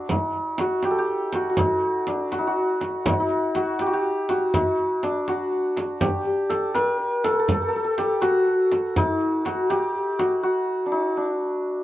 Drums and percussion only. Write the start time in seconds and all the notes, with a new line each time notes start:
0.09 frame drum, tombak dum
0.58 tombak tek, frame drum
0.83 tombak tek, frame drum
1.08 tombak ka
1.33 tombak tek, frame drum
1.57 frame drum, tombak dum
2.07 tombak tek, frame drum
2.32 tombak tek, frame drum
2.57 tombak ka
2.81 tombak tek, frame drum
3.06 frame drum, tombak dum
3.55 tombak tek, frame drum
3.79 tombak tek, frame drum
4.05 tombak ka
4.29 tombak tek, frame drum
4.54 frame drum, tombak dum
5.03 tombak tek, frame drum
5.28 tombak tek, frame drum
5.52 tombak ka
5.77 tombak tek, frame drum
5.89 tombak ka
6.01 frame drum, tombak dum
6.50 tombak tek, frame drum
6.75 tombak tek, frame drum
7.00 tombak ka
7.24 tombak tek, frame drum
7.48 tombak dum, frame drum
7.98 tombak tek, frame drum
8.22 tombak tek, frame drum
8.47 tombak ka
8.72 tombak tek, frame drum
8.96 tombak dum, frame drum
9.45 tombak tek, frame drum
9.70 tombak tek, frame drum
9.95 tombak ka
10.19 tombak tek, frame drum